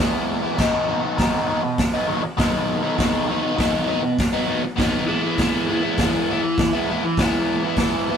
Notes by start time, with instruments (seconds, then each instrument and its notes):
0.00 overdriven electric guitar E3 G#3 B3 E4
0.43 overdriven electric guitar G#3 B3 E4
0.57 overdriven electric guitar B2 D#3 F#3 B3 D#4, kick, snare, crash
0.87 overdriven electric guitar D#3 F#3 B3 D#4
1.03 overdriven electric guitar F#3 B3 D#4
1.17 overdriven electric guitar B2 D#3 F#3 B3 D#4, kick, snare, open hi-hat
1.47 overdriven electric guitar D#3 F#3 B3 D#4
1.63 muted overdriven electric guitar stroke
1.78 kick, snare, open hi-hat
1.94 overdriven electric guitar F#3 B3 D#4
2.07 overdriven electric guitar D#3 F#3 B3 D#4
2.23 muted overdriven electric guitar stroke
2.37 overdriven electric guitar B2 D#3 F#3 B3 D#4, kick, snare, open hi-hat
2.82 overdriven electric guitar F#3 B3 D#4
2.96 overdriven electric guitar B2 D#3 F#3 B3 D#4, kick, open hi-hat
3.00 snare
3.28 overdriven electric guitar D#3 F#3 B3 D#4
3.42 overdriven electric guitar F#3 B3 D#4
3.56 overdriven electric guitar B2 D#3 F#3 B3 D#4, kick, open hi-hat
3.60 snare
3.86 overdriven electric guitar D#3 F#3 B3 D#4
4.02 muted overdriven electric guitar stroke
4.19 kick, snare, open hi-hat
4.33 overdriven electric guitar F#3 B3 D#4
4.46 overdriven electric guitar D#3 F#3 B3 D#4
4.63 muted overdriven electric guitar stroke
4.76 overdriven electric guitar B2 D#3 F#3 B3 D#4, kick, snare, open hi-hat
5.06 overdriven electric guitar E3 G#3 B3 E4
5.22 overdriven electric guitar G#3 B3 E4
5.38 overdriven electric guitar E3 G#3 B3, kick, snare, open hi-hat
5.42 overdriven electric guitar E4
5.67 overdriven electric guitar E3 G#3 B3 E4
5.83 overdriven electric guitar G#3 B3 E4
5.98 overdriven electric guitar E3 G#3 B3 E4, kick, snare, open hi-hat
6.29 overdriven electric guitar E3 G#3 B3 E4
6.43 muted overdriven electric guitar stroke
6.58 kick, snare, open hi-hat
6.73 overdriven electric guitar G#3 B3 E4
6.89 overdriven electric guitar E3 G#3 B3 E4
7.05 muted overdriven electric guitar stroke
7.17 overdriven electric guitar E3 G#3 B3, kick, snare, open hi-hat
7.22 overdriven electric guitar E4
7.64 overdriven electric guitar G#3 B3 E4
7.77 overdriven electric guitar E3 G#3 B3, kick, snare, open hi-hat
7.81 overdriven electric guitar E4
8.07 overdriven electric guitar E3 G#3 B3 E4